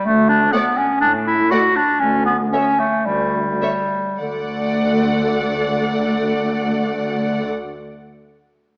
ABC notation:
X:1
M:4/4
L:1/8
Q:1/4=105
K:D
V:1 name="Violin section"
z2 f2 z2 f2 | z2 e2 z2 e2 | f8- | f8 |]
V:2 name="Violin section"
z2 d2 z2 d2 | z2 c2 z2 c2 | d8- | d8 |]
V:3 name="Clarinet"
A, D B, C D E F D | C B, C A, G,4 | D,8- | D,8 |]
V:4 name="Viola section"
z2 A,2 z2 A,2 | z2 A,2 z2 A,2 | A,8- | A,8 |]
V:5 name="Cello section" clef=bass
D,,2 z2 A,,2 z2 | D,,2 z2 D,,2 z2 | D,,8- | D,,8 |]